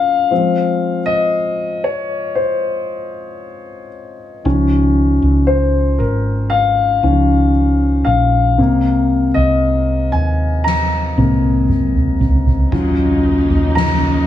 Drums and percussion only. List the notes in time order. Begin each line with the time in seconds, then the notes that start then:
10.66 snare
11.17 high tom
11.69 mid tom
11.95 mid tom
12.21 floor tom
12.46 floor tom
12.72 kick, floor tom, crash
13.50 floor tom
13.77 snare